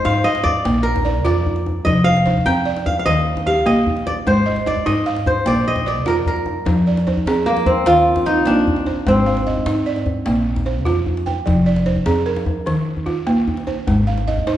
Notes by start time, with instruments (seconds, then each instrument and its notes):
Already playing: kora C5 D5, balafon D#5
0.05 upright bass G#2, balafon D#4, kora F5, djembe slap
0.24 kora D#5, balafon F5
0.35 djembe slap
0.44 kora D5, djembe tone, djembe bass
0.55 djembe slap
0.65 upright bass A#1, balafon A#3, djembe slap
0.83 kora A#4
0.96 djembe slap, djembe bass
1.05 balafon D5, djembe tone
1.25 upright bass F2, balafon F4, kora D5, djembe slap
1.46 djembe bass
1.56 djembe slap
1.66 djembe slap, djembe tone
1.85 upright bass F1, balafon F3, kora D#5, djembe slap, djembe bass
2.04 balafon C5, kora F5, djembe slap
2.17 djembe slap
2.26 balafon C5, djembe slap, djembe tone
2.37 djembe bass
2.46 upright bass F2, balafon C4, kora G5, djembe slap
2.65 balafon D5
2.77 djembe slap
2.86 kora F5, djembe tone, djembe bass
2.97 kora F5, djembe slap
3.06 upright bass D#2, balafon D#3, kora D#5, djembe slap
3.37 djembe slap, djembe bass
3.46 balafon G4, kora F5, djembe tone
3.66 upright bass A#1, balafon A#3, kora D#5, djembe slap
3.87 djembe bass
3.97 djembe slap
4.07 kora D5, djembe slap, djembe tone
4.26 upright bass G#1, balafon G#3, kora C5, djembe slap, djembe bass
4.46 balafon D#5
4.56 djembe slap
4.66 kora D5, balafon D#5, djembe tone
4.76 djembe slap, djembe bass
4.86 upright bass G#2, balafon D#4, kora D#5, djembe slap
4.97 djembe slap
5.06 balafon F5
5.16 djembe slap
5.26 kora C5, djembe slap, djembe tone, djembe bass
5.46 upright bass A#1, balafon A#3, kora D5, djembe slap
5.68 kora D#5
5.76 djembe slap, djembe bass
5.86 balafon D5, kora D5
6.06 upright bass F2, balafon F4, kora A#4, djembe slap
6.26 kora A#4, djembe slap, djembe bass
6.36 djembe slap
6.46 djembe tone
6.56 djembe slap
6.65 upright bass F2, balafon F3, djembe slap, djembe bass
6.87 balafon D5, djembe slap
6.97 djembe slap
7.07 balafon C5, djembe slap, djembe tone
7.17 djembe bass
7.26 upright bass F3, balafon C4 G#4, djembe slap
7.46 kora A#3, balafon A#4
7.57 djembe slap
7.66 kora C4, djembe tone, djembe bass
7.77 djembe slap
7.86 upright bass D#2, balafon D#3, kora F4, djembe slap
8.16 djembe slap, djembe bass
8.26 kora D#4, balafon F4, djembe tone
8.46 upright bass A#1, balafon A#3, kora D4, djembe slap
8.67 djembe bass
8.76 djembe slap
8.86 balafon C5, djembe slap, djembe tone
9.07 upright bass G#1, balafon G#3, kora C4, djembe slap, djembe bass
9.26 balafon F5, djembe slap
9.37 djembe slap
9.46 balafon D#5, djembe slap, djembe tone
9.56 djembe bass
9.66 upright bass G#2, balafon D#4, djembe slap
9.86 balafon D5
9.96 djembe slap
10.06 djembe tone, djembe bass
10.16 djembe slap
10.26 upright bass A#1, balafon A#3, djembe slap
10.56 djembe slap, djembe bass
10.66 balafon C5, djembe tone
10.85 upright bass F2, balafon F4, djembe slap
11.06 djembe bass
11.17 djembe slap
11.26 balafon G5, djembe slap, djembe tone
11.46 upright bass F1, balafon F3, djembe slap, djembe bass
11.66 balafon D5, djembe slap
11.76 djembe slap
11.86 balafon C5, djembe slap, djembe tone
11.96 djembe bass
12.06 upright bass F2, balafon C4 G#4, djembe slap
12.26 balafon A#4
12.36 djembe slap
12.46 djembe tone, djembe bass
12.57 djembe slap
12.66 upright bass D#2, balafon D#3, djembe slap
12.97 djembe bass
13.06 balafon F4, djembe tone
13.26 upright bass A#1, balafon A#3, djembe slap
13.48 djembe bass
13.57 djembe slap
13.67 balafon C5, djembe slap, djembe tone
13.87 upright bass G#1, balafon G#3, djembe slap, djembe bass
14.07 balafon F5
14.18 djembe slap
14.28 balafon D#5, djembe slap, djembe tone
14.38 djembe bass
14.47 upright bass G#2, balafon D#4 C5, djembe slap